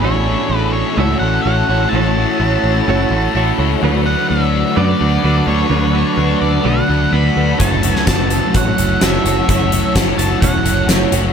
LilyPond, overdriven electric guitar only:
\new Staff \with { instrumentName = "Overdriven electric guitar" } { \time 4/4 \key a \major \tempo 4 = 127 <a, e a cis' e' a'>8 <a cis' e' a'>8 <a cis' e' a'>4. <a cis' e' a'>8 <a cis' e' a'>8 <a cis' e' a'>8 | <a, e a cis' e' a'>8 <a cis' e' a'>8 <a cis' e' a'>4. <a cis' e' a'>8 <a cis' e' a'>8 <a cis' e' a'>8 | <d a d' fis'>8 <a d' fis'>8 <d a d' fis'>4. <a d' fis'>8 <d a d' fis'>8 <a d' fis'>8 | <d a d' fis'>8 <a d' fis'>8 <d a d' fis'>4. <a d' fis'>8 <d a d' fis'>8 <a d' fis'>8 |
<fis a cis' fis'>8 <a cis' fis'>8 <fis a cis' fis'>4. <a cis' fis'>8 <fis a cis' fis'>8 <a cis' fis'>8 | <fis a cis' fis'>8 <a cis' fis'>8 <fis a cis' fis'>4. <a cis' fis'>8 <fis a cis' fis'>8 <a cis' fis'>8 | }